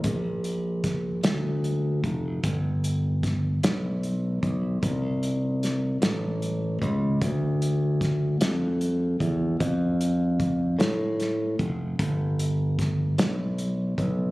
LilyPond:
<<
  \new Staff \with { instrumentName = "Fingered electric bass" } { \clef bass \time 6/8 \key g \dorian \tempo 4. = 50 bes,,4. d,4 f,,8 | g,,4. b,,4 b,,8 | c,4. a,,4 cis,8 | d,4. f,4 e,8 |
f,4. a,4 f,,8 | g,,4. b,,4 b,,8 | }
  \new DrumStaff \with { instrumentName = "Drums" } \drummode { \time 6/8 <hh bd>8 hh8 <hh bd sn>8 <hh sn>8 hh8 <hh bd>8 | <hh bd>8 hh8 <hh bd sn>8 <hh sn>8 hh8 <hh bd>8 | <hh bd>8 hh8 <hh sn>8 <hh sn>8 hh8 <hh bd>8 | <hh bd>8 hh8 <hh bd sn>8 <hh sn>8 hh8 <hh bd>8 |
<hh bd>8 hh8 <hh bd>8 <hh sn>8 <hh sn>8 <hh bd>8 | <hh bd>8 hh8 <hh bd sn>8 <hh sn>8 hh8 <hh bd>8 | }
>>